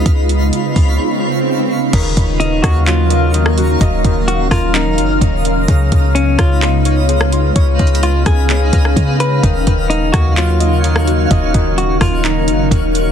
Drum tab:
CC |------------------------------------------------|x-----------------------------------------------|------------------------------------------------|------------------------------------------------|
HH |x-----x-----x-----o-----------------------------|x-----x-----x-----x-----x-----x-----x-----x-----|x-----x-----x-----o-----x-----x-----x-----x-----|x-----x-----x-----x-----x-----x-----x-----x-----|
CP |------------------------------------------------|------------------------x-----------------------|------------------------x-----------------------|------------------------x-----------------------|
SD |------------------------------------------------|------------------r--------------------r--------|------------------r-----------------------------|------------------r--------------------r--------|
BD |o-----------------o-----------------------------|o-----o-----------o-----------------------------|o-----o-----------o-----------------o-----------|o-----o-----------o-----------------------------|

CC |------------------------------------------------|------------------------------------------------|------------------------------------------------|
HH |x-----x-x-x-x-----x-----x-----x-----x-----x-----|x-----x-----x-----x-----x-----x-----x-----x-----|x-----x-----x-----o-----x-----x-----x-----x-----|
CP |------------------------x-----------------------|------------------------x-----------------------|------------------------x-----------------------|
SD |------------------r--------------r--------------|------------------r--------------------r--------|------------------r-----------------------------|
BD |o-----o-----------o-----------o-----o-----------|o-----o-----------o-----------------------------|o-----o-----------o-----------------o-----------|